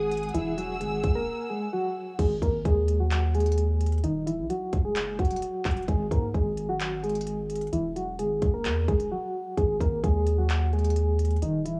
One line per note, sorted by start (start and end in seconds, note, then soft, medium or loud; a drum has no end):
0.00 0.30 G#1 loud
0.00 0.31 G#3 medium
0.00 0.30 G#4 medium
0.00 2.15 G#4 medium
0.00 2.15 F#5 medium
0.00 2.15 G#5 medium
0.00 0.30 D#6 medium
0.11 closed hi-hat medium
0.17 closed hi-hat medium
0.23 closed hi-hat medium
0.29 closed hi-hat soft
0.34 0.82 E1 loud
0.34 0.53 E3 medium
0.34 0.53 E4 medium
0.34 2.17 E6 medium
0.34 closed hi-hat medium
0.57 0.76 F#3 medium
0.57 0.76 F#4 medium
0.57 closed hi-hat medium
0.80 1.02 G#1 loud
0.80 1.13 G#3 medium
0.80 1.13 G#4 medium
0.80 closed hi-hat medium
1.03 1.27 E1 loud
1.03 kick loud
1.03 closed hi-hat medium
1.15 1.48 A#3 medium
1.15 1.48 A#4 medium
1.50 1.69 G#3 medium
1.50 1.68 G#4 medium
1.73 2.17 F#3 medium
1.73 2.16 F#4 medium
2.19 2.41 G#1 loud
2.19 2.38 G#3 medium
2.19 2.37 G#4 medium
2.19 kick loud
2.19 closed hi-hat medium
2.19 crash medium
2.42 2.64 G#1 loud
2.42 2.61 A#3 medium
2.42 2.60 A#4 medium
2.42 kick medium
2.42 closed hi-hat medium
2.65 4.00 D#2 loud
2.65 2.98 G#3 medium
2.65 2.98 G#4 medium
2.65 kick loud
2.65 closed hi-hat medium
2.88 closed hi-hat medium
3.00 3.33 F#3 medium
3.00 3.32 F#4 medium
3.11 clap loud
3.11 closed hi-hat medium
3.34 4.00 G#3 medium
3.34 4.00 G#4 medium
3.34 closed hi-hat soft
3.40 closed hi-hat medium
3.46 closed hi-hat medium
3.52 closed hi-hat medium
3.58 closed hi-hat medium
3.81 closed hi-hat medium
3.86 closed hi-hat medium
3.92 closed hi-hat soft
3.98 closed hi-hat soft
4.04 4.40 D#1 loud
4.04 4.23 D#3 medium
4.04 4.22 D#4 medium
4.04 closed hi-hat medium
4.27 4.45 E3 medium
4.27 4.45 E4 medium
4.27 closed hi-hat medium
4.38 4.49 A#1 loud
4.50 4.83 F#3 medium
4.50 4.82 F#4 medium
4.50 closed hi-hat medium
4.73 4.97 D#1 loud
4.73 kick medium
4.73 closed hi-hat medium
4.85 5.18 G#3 medium
4.85 5.17 G#4 medium
4.96 5.18 F#1 loud
4.96 clap loud
4.96 closed hi-hat medium
5.19 5.41 D#1 loud
5.19 5.85 F#3 medium
5.19 5.84 F#4 medium
5.19 kick loud
5.19 closed hi-hat soft
5.25 closed hi-hat medium
5.31 closed hi-hat medium
5.36 closed hi-hat medium
5.42 closed hi-hat medium
5.65 5.87 D#1 loud
5.65 kick medium
5.65 clap loud
5.65 closed hi-hat medium
5.71 closed hi-hat medium
5.77 closed hi-hat medium
5.82 closed hi-hat soft
5.88 6.10 G#1 loud
5.88 6.07 G#3 medium
5.88 6.07 G#4 medium
5.88 kick loud
5.88 closed hi-hat medium
6.11 6.33 G#2 loud
6.11 6.30 A#3 medium
6.11 6.30 A#4 medium
6.11 kick medium
6.11 closed hi-hat medium
6.34 7.69 G#1 loud
6.34 6.67 G#3 medium
6.34 6.67 G#4 medium
6.34 kick loud
6.34 closed hi-hat medium
6.57 closed hi-hat medium
6.69 7.02 F#3 medium
6.69 7.02 F#4 medium
6.80 clap loud
6.80 closed hi-hat medium
7.03 7.69 G#3 medium
7.03 7.69 G#4 medium
7.03 closed hi-hat soft
7.09 closed hi-hat medium
7.15 closed hi-hat medium
7.21 closed hi-hat medium
7.27 closed hi-hat medium
7.50 closed hi-hat medium
7.56 closed hi-hat medium
7.61 closed hi-hat soft
7.67 closed hi-hat soft
7.73 8.21 E1 loud
7.73 7.92 E3 medium
7.73 7.91 E4 medium
7.73 closed hi-hat medium
7.96 8.15 F#3 medium
7.96 8.14 F#4 medium
7.96 closed hi-hat medium
8.19 8.41 G#1 loud
8.19 8.52 G#3 medium
8.19 8.52 G#4 medium
8.19 closed hi-hat medium
8.42 8.67 E1 loud
8.42 kick loud
8.42 closed hi-hat medium
8.54 8.87 A#3 medium
8.54 8.86 A#4 medium
8.65 8.87 E2 medium
8.65 clap loud
8.65 closed hi-hat medium
8.88 9.10 E1 loud
8.88 9.07 G#3 medium
8.88 9.07 G#4 medium
8.88 kick loud
8.88 closed hi-hat medium
9.00 closed hi-hat medium
9.11 9.55 F#3 medium
9.11 9.55 F#4 medium
9.57 9.80 G#1 loud
9.57 9.76 G#3 medium
9.57 9.76 G#4 medium
9.57 kick medium
9.57 closed hi-hat medium
9.80 10.03 G#1 loud
9.80 9.99 A#3 medium
9.80 9.99 A#4 medium
9.80 kick loud
9.80 closed hi-hat medium
10.04 11.38 D#2 loud
10.04 10.37 G#3 medium
10.04 10.36 G#4 medium
10.04 kick loud
10.04 closed hi-hat medium
10.27 closed hi-hat medium
10.38 10.71 F#3 medium
10.38 10.71 F#4 medium
10.50 clap loud
10.50 closed hi-hat medium
10.73 11.39 G#3 medium
10.73 11.38 G#4 medium
10.73 closed hi-hat soft
10.79 closed hi-hat medium
10.84 closed hi-hat medium
10.90 closed hi-hat medium
10.96 closed hi-hat medium
11.19 closed hi-hat medium
11.25 closed hi-hat medium
11.31 closed hi-hat soft
11.36 closed hi-hat soft
11.42 11.78 D#1 loud
11.42 11.61 D#3 medium
11.42 11.61 D#4 medium
11.42 closed hi-hat medium
11.65 11.80 E3 medium
11.65 11.80 E4 medium
11.65 closed hi-hat medium
11.77 11.80 A#1 loud